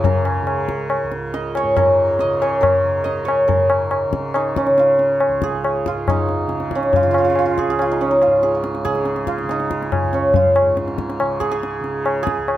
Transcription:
Already playing: tanpura C#2 G#2 C#3, santur G#4 C#5 D#5 F5
0.04 santur A#4, tabla tin, tabla ge
0.25 tabla na
0.42 tanpura C#3
0.47 tabla na
0.69 tabla ke
0.90 tabla na
1.03 tanpura C#2
1.12 tabla te
1.34 santur D#5, tabla te
1.55 santur C#5, tabla na
1.63 tanpura G#2
1.77 santur A#4, tabla na, tabla ge
2.19 santur D#5, tabla te
2.23 tanpura C#3
2.42 santur C#5, tabla na
2.61 santur A#4, tabla na, tabla ge
2.84 tanpura C#3
3.04 santur D#5, tabla te
3.25 santur C#5, tabla na
3.48 tanpura G#2, santur A#4, tabla tin, tabla ge
3.70 tabla na
3.91 tabla na
4.10 tanpura C#3, tabla ke
4.34 santur D#4, tabla na
4.56 santur C#4, tabla ke
4.67 tanpura C#3, tabla te
4.78 santur F4, tabla te
4.99 tabla te
5.20 tabla na
5.28 tanpura C#2
5.42 santur G#4, tabla ke
5.64 tabla na
5.86 tanpura G#2, santur F4, tabla ke
6.08 santur D#4, tabla na, tabla ge
6.29 tabla te
6.47 tanpura C#3, tabla te
6.60 tabla te
6.71 tabla ke
6.75 santur C#4
6.83 tabla te
6.93 santur F4, tabla tin, tabla ge
7.03 santur F4
7.07 tanpura C#3
7.11 santur F4, tabla na
7.18 santur F4
7.25 santur F4
7.30 santur F4
7.35 santur F4, tabla na
7.46 santur F4
7.58 santur G#4, tabla ke
7.67 tanpura C#2, santur G#4
7.79 santur F4, tabla na
7.91 santur D#4
8.01 santur C#4, tabla te
8.11 santur D#4
8.22 santur F4, tabla te
8.26 tanpura G#2
8.43 santur G#4, tabla te
8.55 santur F4
8.64 tabla te
8.75 tabla te
8.85 tanpura C#3, santur G#4, tabla ke
8.95 tabla te
9.05 tabla te
9.16 tabla te
9.27 santur F4, tabla ke
9.38 tabla te
9.44 tanpura C#3
9.49 santur D#4, tabla te
9.60 tabla te
9.71 tabla ke
9.82 tabla te
9.92 tabla na, tabla ge
10.03 tanpura C#2
10.13 santur C#4, tabla te
10.34 santur F4, tabla tin, tabla ge
10.56 tabla na
10.61 tanpura G#2
10.77 tabla te
10.88 tabla te
10.98 tabla ke
11.10 tabla te
11.20 tanpura C#3, tabla na
11.40 santur G#4, tabla ke
11.51 santur G#4, tabla te
11.63 tabla te
11.80 tanpura C#3
11.84 tabla te
12.06 tabla na
12.23 santur G#4
12.27 tabla ke
12.38 tanpura C#2
12.48 tabla na

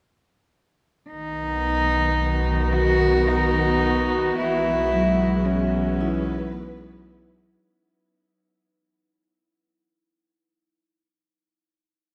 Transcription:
1.10 sub bass B1, string section D#3, synth drone B3 F#4, cello D#4
1.44 string section B3
2.27 string section F#4
2.45 string section A#4
2.73 cello F#4
3.28 cello D#4
4.37 sub bass B1, string section E3, cello E4
4.51 string section G#3
4.93 vibraphone F#3
5.45 cello C#4
5.84 string section B4
6.01 vibraphone D#4 E4
6.53 cello B3

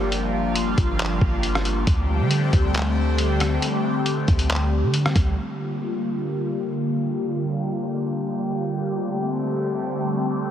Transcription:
Already playing: 808-style bass G1, analog synth pad F3 G3 A#3 D4
0.12 analog synth pad F4, closed hi-hat
0.56 closed hi-hat
0.78 808-style bass G1, kick, closed hi-hat
0.99 clap, closed hi-hat
1.21 808-style bass G1, kick
1.43 closed hi-hat
1.55 cross-stick
1.65 closed hi-hat
1.87 808-style bass D2, analog synth pad D3 G3 A3 C4 G4, kick, closed hi-hat
2.20 808-style bass D3
2.31 closed hi-hat
2.53 808-style bass D2, kick, closed hi-hat
2.74 clap, closed hi-hat
3.18 closed hi-hat
3.40 cross-stick, closed hi-hat
3.62 closed hi-hat
4.06 closed hi-hat
4.28 808-style bass D2, kick, closed hi-hat
4.39 closed hi-hat
4.50 clap, closed hi-hat
4.83 808-style bass D3
4.94 closed hi-hat
5.06 cross-stick
5.16 808-style bass D2, kick, closed hi-hat
5.37 analog synth pad D3 G3 A#3 F4 G4
8.88 analog synth pad D3 A3 C4

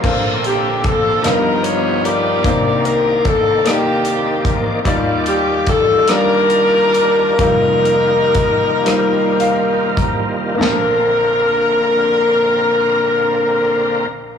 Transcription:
0.02 grand piano A#1 A#2 A#3 D4 A4, tonewheel organ D3 A#3 C4 A4, kick, crash
0.06 grand piano C5
0.44 saxophone section G4, closed hi-hat
0.84 saxophone section A4, kick, closed hi-hat
1.22 grand piano G1 G2 G3 B3 D#4 F4, tonewheel organ F3 B3 D#4 G4, saxophone section D#4 F4 A#4, closed hi-hat
1.26 cross-stick
1.64 saxophone section C#5, closed hi-hat
2.05 saxophone section G4 A#4 D5, closed hi-hat
2.42 grand piano C2 C3 A#3 D4 D#4, tonewheel organ D#3 A#3 C4 D5, kick, closed hi-hat
2.47 grand piano C5
2.85 saxophone section A#4, closed hi-hat
3.25 saxophone section A4, kick, closed hi-hat
3.64 grand piano A#3 D#4 A#4 D5, saxophone section A#3, cross-stick, closed hi-hat
3.68 saxophone section D#4 G4
4.05 closed hi-hat
4.45 kick, closed hi-hat
4.84 grand piano D#2 D#3 G3 D#4 F4 D5, tonewheel organ D#3 G3 E4 D5, kick, closed hi-hat
4.91 tonewheel organ F4
5.26 saxophone section G4, closed hi-hat
5.67 saxophone section A4, kick, closed hi-hat
6.08 grand piano G3 D4 F4 D5, saxophone section D4 G4 A#4, cross-stick, closed hi-hat
6.50 closed hi-hat
6.94 closed hi-hat
7.38 grand piano F1 F2 G3 D#4 F4 A#4, tonewheel organ D#3 G3 A#3 F4, saxophone section D#4 G4 A#4, kick, closed hi-hat
7.85 closed hi-hat
8.35 kick, closed hi-hat
8.85 grand piano G3 D#4 F4 C5, cross-stick, closed hi-hat
9.40 grand piano F5, closed hi-hat
9.97 grand piano A#5, kick, closed hi-hat
10.55 tonewheel organ D3 A#3 C4, grand piano A#3 D4
10.59 grand piano A#1 A5, tonewheel organ A#4, saxophone section A#4, snare
10.64 grand piano C5

